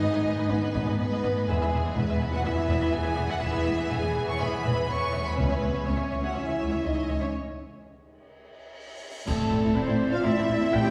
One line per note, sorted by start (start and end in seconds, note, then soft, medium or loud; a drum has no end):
0.00 0.07 G#1 medium
0.00 0.07 G#2 medium
0.00 1.30 D#3 medium
0.00 1.30 B3 medium
0.00 1.46 B3 medium
0.00 0.51 D#4 loud
0.00 1.49 D#4 medium
0.00 1.47 G#4 medium
0.00 0.06 B4 medium
0.00 0.48 D#5 medium
0.00 0.49 D#5 medium
0.00 0.06 D#5 medium
0.00 1.46 G#5 medium
0.13 0.20 G#2 medium
0.13 0.19 B4 medium
0.13 0.18 D#5 medium
0.25 0.31 G#1 medium
0.25 0.31 G#2 medium
0.25 0.32 B4 medium
0.25 0.31 D#5 medium
0.38 0.44 G#2 medium
0.38 0.43 B4 medium
0.38 0.43 D#5 medium
0.48 0.56 G#1 medium
0.48 0.56 G#2 medium
0.48 0.98 B3 loud
0.48 0.98 B4 medium
0.48 0.55 B4 medium
0.48 0.99 B4 medium
0.48 0.54 D#5 medium
0.62 0.68 G#2 medium
0.62 0.67 B4 medium
0.62 0.68 D#5 medium
0.74 0.81 G#1 medium
0.74 0.80 G#2 medium
0.74 0.79 B4 medium
0.74 0.79 D#5 medium
0.86 0.92 G#2 medium
0.86 0.92 B4 medium
0.86 0.92 D#5 medium
0.98 1.04 G#1 medium
0.98 1.04 G#2 medium
0.98 1.48 B3 loud
0.98 1.04 B4 medium
0.98 1.48 B4 medium
0.98 1.04 D#5 medium
1.10 1.16 G#2 medium
1.10 1.17 B4 medium
1.10 1.17 D#5 medium
1.23 1.29 G#1 medium
1.23 1.28 G#2 medium
1.23 1.29 B4 medium
1.23 1.29 D#5 medium
1.36 1.41 G#2 medium
1.36 1.42 B4 medium
1.36 1.42 D#5 medium
1.47 1.54 E1 medium
1.47 1.53 E2 medium
1.47 7.32 E3 medium
1.47 1.65 E3 medium
1.47 1.97 G#3 loud
1.47 5.33 B3 medium
1.47 1.65 B3 medium
1.47 1.97 G#4 medium
1.47 1.96 G#4 medium
1.47 7.29 G#4 medium
1.47 1.54 B4 medium
1.47 1.54 E5 medium
1.47 7.32 G#5 medium
1.61 1.66 E2 medium
1.61 1.66 B4 medium
1.61 1.66 E5 medium
1.72 1.78 E1 medium
1.72 1.78 E2 medium
1.72 1.79 B4 medium
1.72 1.79 E5 soft
1.85 1.90 E2 medium
1.85 1.90 B4 medium
1.85 1.90 E5 medium
1.95 2.00 E1 medium
1.95 2.02 E2 medium
1.95 2.34 B3 loud
1.95 2.34 B4 medium
1.95 2.03 B4 medium
1.95 2.03 E5 medium
2.09 2.15 E2 medium
2.09 2.14 B4 medium
2.09 2.14 E5 medium
2.20 2.26 E1 medium
2.20 2.27 E2 medium
2.20 2.26 B4 medium
2.20 2.26 E5 medium
2.32 2.39 E2 medium
2.32 2.46 F#4 loud
2.32 2.37 B4 medium
2.32 2.37 E5 medium
2.32 2.46 F#5 medium
2.44 2.50 E1 medium
2.44 2.51 E2 medium
2.44 2.63 E3 medium
2.44 2.64 B3 medium
2.44 2.94 E4 loud
2.44 2.50 B4 medium
2.44 2.50 E5 medium
2.44 2.94 E5 medium
2.57 2.62 E2 medium
2.57 2.62 B4 medium
2.57 2.62 E5 medium
2.69 2.74 E1 loud
2.69 2.75 E2 medium
2.69 2.74 B4 medium
2.69 2.74 E5 medium
2.81 2.87 E2 medium
2.81 2.86 B4 medium
2.81 2.86 E5 medium
2.92 2.99 E1 medium
2.92 2.99 E2 medium
2.92 3.31 G#4 loud
2.92 2.98 B4 medium
2.92 2.98 E5 medium
2.92 3.31 G#5 medium
3.03 3.10 E2 medium
3.03 3.09 B4 medium
3.03 3.09 E5 medium
3.16 3.23 E1 medium
3.16 3.23 E2 medium
3.16 3.22 B4 medium
3.16 3.21 E5 medium
3.29 3.35 E2 medium
3.29 3.44 F#4 medium
3.29 3.34 B4 medium
3.29 3.35 E5 medium
3.29 3.42 F#5 medium
3.29 3.44 F#5 medium
3.40 3.48 E1 medium
3.40 3.47 E2 medium
3.40 3.60 E3 medium
3.40 3.60 B3 medium
3.40 3.79 E4 loud
3.40 3.45 B4 medium
3.40 3.46 E5 medium
3.40 3.91 E5 medium
3.53 3.60 E2 medium
3.53 3.59 B4 medium
3.53 3.58 E5 medium
3.65 3.72 E1 medium
3.65 3.72 E2 medium
3.65 3.70 B4 soft
3.65 3.71 E5 medium
3.77 3.84 E2 medium
3.77 3.83 B4 medium
3.77 3.83 E5 medium
3.90 3.96 E1 medium
3.90 3.96 E2 medium
3.90 4.29 G#4 loud
3.90 3.95 B4 medium
3.90 3.95 E5 medium
3.90 4.28 G#5 medium
3.90 4.29 G#5 medium
4.01 4.08 E2 medium
4.01 4.07 B4 medium
4.01 4.07 E5 soft
4.14 4.21 E1 medium
4.14 4.21 E2 medium
4.14 4.19 B4 medium
4.14 4.20 E5 medium
4.25 4.33 E2 medium
4.25 4.31 B4 medium
4.25 4.31 E5 medium
4.25 4.41 C#6 medium
4.30 4.41 C#5 loud
4.39 4.46 E1 medium
4.39 4.46 E2 medium
4.39 4.58 E3 medium
4.39 4.58 B3 medium
4.39 4.44 B4 medium
4.39 4.90 B4 medium
4.39 4.44 E5 medium
4.39 4.90 B5 medium
4.50 4.55 B4 medium
4.50 4.56 E5 medium
4.54 4.59 E2 medium
4.62 4.70 E2 medium
4.62 4.68 B4 medium
4.62 4.67 E5 medium
4.66 4.71 E1 medium
4.74 4.80 B4 medium
4.74 4.80 E5 medium
4.79 4.83 E2 medium
4.86 4.95 E1 medium
4.86 4.92 B4 medium
4.86 5.25 C#5 loud
4.86 4.92 E5 medium
4.86 5.26 C#6 medium
4.91 4.95 E2 medium
4.91 5.27 C#6 medium
4.99 5.05 B4 medium
4.99 5.04 E5 medium
5.03 5.08 E2 medium
5.12 5.19 E1 medium
5.12 5.20 E2 medium
5.12 5.17 B4 medium
5.12 5.17 E5 medium
5.23 5.28 B4 medium
5.23 5.28 E5 medium
5.23 5.39 B5 medium
5.27 5.31 E2 medium
5.27 5.39 B4 medium
5.36 5.44 C#2 medium
5.36 6.07 C#3 medium
5.36 5.54 E3 medium
5.36 5.87 B3 loud
5.36 5.54 C#4 medium
5.36 7.33 C#4 medium
5.36 5.86 B4 medium
5.36 5.42 C#5 medium
5.36 5.41 E5 medium
5.49 5.57 C#2 medium
5.49 5.55 C#5 medium
5.49 5.55 E5 medium
5.60 5.68 C#2 medium
5.60 5.69 C#2 medium
5.60 5.66 C#5 medium
5.60 5.66 E5 soft
5.73 5.81 C#2 medium
5.73 5.79 C#5 medium
5.73 5.78 E5 soft
5.85 5.93 C#2 medium
5.85 6.24 C#4 medium
5.85 5.91 C#5 medium
5.85 6.23 C#5 medium
5.85 6.24 C#5 medium
5.85 5.90 E5 medium
5.97 6.05 C#2 medium
5.97 6.02 C#5 soft
5.97 6.02 E5 medium
6.11 6.17 C#2 medium
6.11 6.18 C#2 medium
6.11 6.16 C#5 medium
6.11 6.16 E5 medium
6.22 6.29 C#2 medium
6.22 6.36 F#4 medium
6.22 6.28 C#5 medium
6.22 6.28 E5 medium
6.22 6.35 F#5 medium
6.22 6.36 F#5 medium
6.34 6.42 C#2 medium
6.34 6.52 E3 medium
6.34 6.52 C#4 medium
6.34 6.85 E4 medium
6.34 6.39 C#5 medium
6.34 6.39 E5 medium
6.34 6.85 E5 medium
6.34 6.84 E5 medium
6.46 6.53 C#2 medium
6.46 6.52 C#5 medium
6.46 6.51 E5 medium
6.59 6.66 C#2 medium
6.59 6.64 C#5 medium
6.59 6.64 E5 medium
6.71 6.77 C#2 soft
6.71 6.76 C#5 medium
6.71 6.76 E5 soft
6.83 6.90 C#2 soft
6.83 6.90 C#2 medium
6.83 7.22 D#4 medium
6.83 6.88 C#5 medium
6.83 7.20 D#5 medium
6.83 7.21 D#5 medium
6.83 6.88 E5 medium
6.94 7.02 C#2 medium
6.94 7.00 C#5 medium
6.94 6.99 E5 medium
7.08 7.14 C#2 soft
7.08 7.13 C#5 medium
7.08 7.13 E5 medium
7.19 7.25 C#2 medium
7.19 7.34 C#4 medium
7.19 7.25 C#5 medium
7.19 7.33 C#5 medium
7.19 7.34 C#5 medium
7.19 7.25 E5 medium
7.33 cymbal swell medium
9.26 9.33 A1 medium
9.26 9.32 A2 medium
9.26 10.90 E3 medium
9.26 9.73 A3 loud
9.26 9.32 C4 medium
9.26 10.90 C4 medium
9.26 9.32 E4 medium
9.26 10.90 E4 medium
9.26 9.72 A4 medium
9.26 9.73 A4 medium
9.26 10.90 A4 medium
9.26 10.90 D5 medium
9.26 10.90 E5 medium
9.26 concert bass drum medium
9.26 crash medium
9.26 impact medium
9.51 9.57 A1 medium
9.51 9.57 A2 medium
9.51 9.56 C4 medium
9.51 9.56 E4 soft
9.63 9.70 A2 medium
9.63 9.68 C4 medium
9.63 9.68 E4 medium
9.75 9.81 A1 medium
9.75 9.82 A2 medium
9.75 10.12 C4 medium
9.75 9.80 C4 medium
9.75 9.80 E4 medium
9.75 10.12 C5 medium
9.87 9.94 A2 medium
9.87 9.92 C4 medium
9.87 9.93 E4 medium
10.10 10.25 F4 medium
10.10 10.23 F5 medium
10.10 10.24 F5 medium
10.10 10.25 F5 medium
10.23 10.30 A1 medium
10.23 10.30 A2 medium
10.23 10.29 C4 medium
10.23 10.28 E4 medium
10.23 10.73 E4 loud
10.23 10.73 E5 medium
10.23 10.74 E5 medium
10.37 10.42 A2 medium
10.37 10.42 C4 medium
10.37 10.42 E4 medium
10.49 10.55 A1 medium
10.49 10.54 A2 medium
10.49 10.55 C4 medium
10.49 10.55 E4 medium
10.61 10.66 A2 medium
10.61 10.66 C4 medium
10.61 10.66 E4 medium
10.72 10.79 A1 medium
10.72 10.78 A2 medium
10.72 10.77 C4 medium
10.72 10.77 E4 medium
10.72 10.90 G4 loud
10.72 10.90 G5 loud
10.84 10.90 A2 medium
10.84 10.90 C4 medium
10.84 10.89 E4 medium